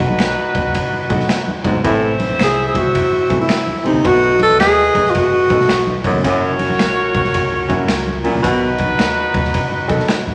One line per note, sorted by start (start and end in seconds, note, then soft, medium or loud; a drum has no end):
0.00 0.34 B1 loud
0.00 0.22 F#3 medium
0.00 0.22 A3 medium
0.00 0.22 B3 medium
0.00 0.22 D#4 medium
0.00 1.61 D#4 medium
0.00 0.23 F#4 loud
0.00 1.61 F#4 medium
0.00 1.61 B4 loud
0.10 high conga medium
0.19 finger snap loud
0.19 snare loud
0.19 ride medium
0.38 muted conga soft
0.55 0.64 D#2 medium
0.55 kick medium
0.55 ride medium
0.55 high conga medium
0.55 low conga medium
0.65 0.73 D#2 medium
0.74 1.12 F#1 medium
0.74 kick medium
0.74 ride medium
0.74 muted conga soft
0.93 muted conga soft
1.09 1.27 B2 loud
1.09 1.31 F#3 medium
1.09 1.31 A3 medium
1.09 1.31 B3 medium
1.09 1.31 D#4 medium
1.09 1.31 F#4 loud
1.09 kick medium
1.09 ride medium
1.09 high conga medium
1.20 snare soft
1.20 high conga medium
1.29 1.61 G1 medium
1.29 finger snap loud
1.29 snare loud
1.29 ride medium
1.48 muted conga soft
1.48 high conga medium
1.64 1.82 G#1 loud
1.64 1.80 G#2 medium
1.64 1.75 F#3 medium
1.64 1.75 A3 medium
1.64 1.75 B3 medium
1.64 1.75 D#4 medium
1.64 1.75 F#4 medium
1.64 kick loud
1.64 ride soft
1.64 low conga medium
1.74 low conga medium
1.84 2.33 A1 loud
1.84 2.13 A2 loud
1.84 2.43 E3 medium
1.84 2.43 A3 medium
1.84 2.43 C4 medium
1.84 3.81 E4 medium
1.84 2.43 E4 loud
1.84 2.43 B4 medium
1.84 3.81 C5 medium
1.84 3.81 E5 medium
1.84 kick loud
1.84 ride medium
2.20 ride medium
2.20 high conga medium
2.30 high conga medium
2.39 2.71 C2 loud
2.39 finger snap loud
2.39 snare loud
2.39 ride medium
2.44 2.66 G#4 loud
2.68 2.79 G#4 medium
2.74 2.92 C2 medium
2.74 3.41 F#4 loud
2.74 kick loud
2.74 ride medium
2.74 high conga medium
2.74 low conga medium
2.95 3.26 E2 medium
2.95 kick loud
2.95 ride medium
3.12 muted conga soft
3.29 3.47 A2 medium
3.29 3.51 E3 medium
3.29 3.51 A3 medium
3.29 3.51 B3 medium
3.29 3.51 C4 medium
3.29 3.52 E4 medium
3.29 kick medium
3.29 ride medium
3.29 high conga medium
3.41 3.89 E4 medium
3.49 finger snap loud
3.49 snare loud
3.49 ride medium
3.67 muted upright bass stroke soft
3.67 muted conga soft
3.67 high conga medium
3.83 4.02 A1 medium
3.83 4.01 C3 medium
3.83 3.94 E3 medium
3.83 3.95 A3 medium
3.83 3.95 B3 medium
3.83 3.95 C4 medium
3.83 3.95 E4 medium
3.83 ride soft
3.87 4.08 D#4 loud
3.94 low conga medium
4.04 4.59 B1 loud
4.04 4.33 B2 loud
4.04 4.63 F#3 medium
4.04 6.01 A3 medium
4.04 4.63 A3 medium
4.04 4.63 B3 medium
4.04 4.63 D#4 medium
4.04 4.63 F#4 medium
4.04 4.41 F#4 loud
4.04 6.01 B4 medium
4.04 6.00 D#5 loud
4.04 kick loud
4.04 ride medium
4.04 muted conga soft
4.39 4.60 A4 loud
4.39 ride medium
4.39 high conga medium
4.49 high conga medium
4.59 4.90 D#2 medium
4.59 5.12 G#4 loud
4.59 finger snap loud
4.59 snare loud
4.59 ride medium
4.95 5.12 D#2 medium
4.95 kick medium
4.95 ride medium
4.95 high conga medium
4.95 low conga medium
5.06 snare soft
5.11 5.17 F4 medium
5.15 5.52 F#1 medium
5.15 6.05 F#4 loud
5.15 kick loud
5.15 ride medium
5.32 muted conga soft
5.50 5.67 B2 loud
5.50 5.71 F#3 medium
5.50 5.72 A3 medium
5.50 5.71 B3 medium
5.50 5.72 D#4 medium
5.50 5.72 A4 medium
5.50 kick medium
5.50 ride medium
5.50 high conga medium
5.60 snare soft
5.69 6.09 B1 loud
5.69 finger snap loud
5.69 snare loud
5.69 ride medium
5.87 muted conga soft
5.87 high conga medium
6.04 6.21 F#2 medium
6.04 6.15 F#3 medium
6.04 6.15 A3 medium
6.04 6.15 B3 medium
6.04 6.15 D#4 medium
6.04 6.15 F#4 medium
6.04 kick loud
6.04 open hi-hat soft
6.04 ride soft
6.14 6.23 C#2 medium
6.14 low conga medium
6.23 6.72 F#1 loud
6.23 6.53 F#2 loud
6.23 6.82 F#3 medium
6.23 6.82 A#3 medium
6.23 6.82 C#4 medium
6.23 6.82 E4 medium
6.23 6.82 F#4 loud
6.23 8.20 F#4 medium
6.23 8.20 A#4 medium
6.23 8.20 C#5 loud
6.23 kick loud
6.23 hi-hat pedal medium
6.23 ride medium
6.59 ride medium
6.59 high conga medium
6.70 high conga medium
6.79 7.10 A#1 medium
6.79 finger snap loud
6.79 snare loud
6.79 ride medium
6.98 muted conga soft
7.14 7.32 A#1 loud
7.14 kick medium
7.14 ride medium
7.14 high conga medium
7.14 low conga medium
7.24 snare soft
7.34 7.65 C#2 medium
7.34 kick medium
7.34 ride medium
7.34 muted conga soft
7.51 muted conga soft
7.69 7.87 F#2 loud
7.69 7.90 F#3 loud
7.69 7.91 A#3 medium
7.69 7.90 C#4 medium
7.69 7.91 E4 medium
7.69 7.91 F#4 loud
7.69 kick medium
7.69 ride medium
7.69 high conga medium
7.88 8.28 C#2 medium
7.88 finger snap loud
7.88 snare loud
7.88 ride medium
7.88 muted conga soft
8.07 muted conga soft
8.07 high conga medium
8.24 8.40 A#2 medium
8.24 8.35 F#3 medium
8.24 8.35 A#3 medium
8.24 8.35 C#4 medium
8.24 8.35 E4 medium
8.24 8.35 F#4 medium
8.24 open hi-hat soft
8.24 ride soft
8.34 8.43 A#1 medium
8.34 low conga medium
8.42 8.92 B1 loud
8.42 8.71 B2 loud
8.42 9.02 D#3 medium
8.42 9.02 F#3 medium
8.42 9.02 B3 medium
8.42 9.02 D#4 medium
8.42 10.34 D#4 medium
8.42 9.02 F#4 loud
8.42 10.34 F#4 medium
8.42 10.34 B4 loud
8.42 kick loud
8.42 hi-hat pedal medium
8.42 ride medium
8.62 muted conga soft
8.78 kick medium
8.78 ride medium
8.78 high conga medium
8.90 high conga medium
8.99 9.30 D#2 medium
8.99 finger snap loud
8.99 snare loud
8.99 ride medium
8.99 muted conga soft
9.17 muted conga soft
9.34 9.51 D#2 medium
9.34 kick loud
9.34 ride medium
9.34 high conga medium
9.34 low conga medium
9.44 snare soft
9.54 9.85 F#1 loud
9.54 kick loud
9.54 ride medium
9.71 muted conga soft
9.87 10.06 B2 loud
9.87 10.10 D#3 medium
9.87 10.10 F#3 medium
9.87 10.10 B3 medium
9.87 10.10 D#4 medium
9.87 10.10 A4 loud
9.87 kick medium
9.87 ride medium
9.87 high conga medium
9.99 snare soft
9.99 high conga medium
10.08 finger snap loud
10.08 muted upright bass stroke soft
10.08 snare loud
10.08 ride medium
10.27 10.34 A2 medium
10.27 high conga medium